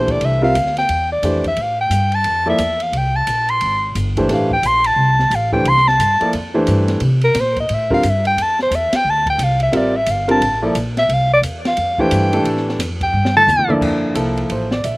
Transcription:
Already playing: upright bass A#1, grand piano E3 A3 D4 G4 C5, soprano saxophone C5
0.08 soprano saxophone D5, kick, ride
0.21 upright bass C2, ride
0.25 soprano saxophone E5
0.42 grand piano G3 C4 F4 A#4 E5, soprano saxophone F5
0.55 upright bass D2, hi-hat pedal, ride
0.66 snare
0.77 soprano saxophone G5, snare, ride
0.89 upright bass E2, ride
1.12 soprano saxophone D5
1.22 upright bass F2, grand piano E3 A3 D4 G4 C5, hi-hat pedal, ride
1.44 soprano saxophone E5, kick, ride
1.56 upright bass A2, ride
1.62 soprano saxophone F5
1.81 soprano saxophone G5
1.90 upright bass G2, hi-hat pedal, ride
2.12 soprano saxophone A5, ride
2.24 upright bass F2, ride
2.46 grand piano F3 A#3 E4 A4 D5, soprano saxophone E5
2.58 upright bass E2, hi-hat pedal, ride
2.80 soprano saxophone F5, ride
2.92 upright bass C2, ride
2.98 soprano saxophone G5
3.16 soprano saxophone A5
3.27 upright bass A#1, hi-hat pedal, ride
3.49 soprano saxophone C6, ride
3.61 upright bass G#1, ride
3.95 upright bass G1, hi-hat pedal, ride
4.17 grand piano E3 A3 D4 G4 C5, kick, ride
4.29 upright bass A1, grand piano E3 A3 D4 G4 C5, snare, ride
4.34 soprano saxophone F5
4.51 soprano saxophone G5, kick
4.63 upright bass A#1, hi-hat pedal, ride
4.67 soprano saxophone C6
4.84 soprano saxophone A5, ride
4.96 upright bass C2
5.19 snare
5.30 upright bass A1, hi-hat pedal, ride
5.35 soprano saxophone F5
5.52 grand piano E3 A3 D4 G4 C5, soprano saxophone G5, kick
5.64 upright bass C2, ride
5.69 soprano saxophone C6
5.77 snare
5.88 soprano saxophone A5, snare
5.99 upright bass G2, hi-hat pedal, ride
6.21 grand piano F3 A#3 E4 A4 D5, muted upright bass stroke, ride
6.33 upright bass F2, ride
6.54 grand piano E3 A3 D4 G4 C5
6.67 upright bass G2, hi-hat pedal, ride
6.88 snare, ride
7.00 upright bass C3, ride
7.21 soprano saxophone A#4, ride
7.35 upright bass A#2, snare, hi-hat pedal, ride
7.40 soprano saxophone C5
7.56 soprano saxophone D#5, kick, ride
7.69 upright bass A2, ride
7.74 soprano saxophone E5
7.90 grand piano D3 G3 C4 F4 A#4, kick
7.94 soprano saxophone F5
8.03 upright bass G2, hi-hat pedal, ride
8.10 soprano saxophone E5
8.25 soprano saxophone G5, ride
8.37 upright bass F2, ride
8.42 soprano saxophone A5
8.59 soprano saxophone C5, snare
8.71 upright bass E2, hi-hat pedal, ride
8.75 soprano saxophone E5
8.92 soprano saxophone G5, muted upright bass stroke, snare, ride
9.05 upright bass D2
9.10 soprano saxophone A5
9.26 soprano saxophone G5, kick, ride
9.38 upright bass C2, hi-hat pedal, ride
9.44 soprano saxophone F5
9.60 soprano saxophone E5, ride
9.72 upright bass A1, grand piano G3 C4 F4 A#4 E5, ride
9.77 soprano saxophone D5
9.97 soprano saxophone E5
10.06 upright bass G1, hi-hat pedal, ride
10.11 soprano saxophone F5
10.28 grand piano D3 G3 C4 F4 A#4, soprano saxophone A5, ride
10.41 upright bass A1, ride
10.62 grand piano F3 A#3 E4 A4 D5
10.75 upright bass A#1, hi-hat pedal, ride
10.97 soprano saxophone E5, snare, ride
11.09 upright bass C2, ride
11.13 soprano saxophone F5
11.34 soprano saxophone D5
11.42 upright bass E2, hi-hat pedal, ride
11.65 soprano saxophone F5, snare, ride
11.77 upright bass F2, ride
11.98 grand piano E3 A3 D4 G4 C5, soprano saxophone G5, kick
12.11 upright bass G2, hi-hat pedal, ride
12.33 grand piano E3 A3 D4 G4 A4, ride
12.44 upright bass A2, ride
12.57 snare
12.69 snare
12.78 upright bass F2, snare, hi-hat pedal, ride
13.01 soprano saxophone G5, kick, ride
13.13 upright bass G2
13.25 snare
13.36 soprano saxophone A5, mid tom
13.47 upright bass E2, hi-hat pedal, mid tom
13.59 mid tom
13.68 grand piano G2 F3 A#3 E4 A4 D5, mid tom
13.81 upright bass F2, kick, crash
14.15 upright bass C2, grand piano F3 A#3 E4 A4, hi-hat pedal, ride
14.37 ride
14.50 upright bass A1, grand piano C5, ride
14.71 grand piano D5, snare
14.84 upright bass A#1, grand piano E5, hi-hat pedal, ride

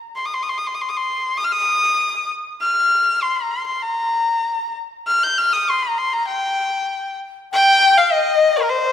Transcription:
0.16 erhu C6
0.25 erhu D#6
0.34 erhu C6
0.42 erhu D#6
0.49 erhu C6
0.58 erhu D#6
0.67 erhu C6
0.74 erhu D#6
0.82 erhu C6
0.89 erhu D#6
0.97 erhu C6
1.37 erhu D#6
1.45 erhu F6
1.52 erhu D#6
2.62 erhu F6
3.22 erhu C6
3.36 erhu A#5
3.51 erhu C6
3.66 erhu C6
3.82 erhu A#5
5.07 erhu F6
5.23 erhu G6
5.38 erhu F6
5.53 erhu D#6
5.70 erhu C6
5.83 erhu A#5
5.98 erhu C6
6.13 erhu A#5
6.27 erhu G5
7.52 xiao G5, erhu G5
7.96 xiao F5, erhu F5
8.13 erhu D#5, xiao D#5
8.56 erhu A#4, xiao A#4
8.70 erhu C5, xiao C5
8.78 xiao D#5
8.86 xiao C5

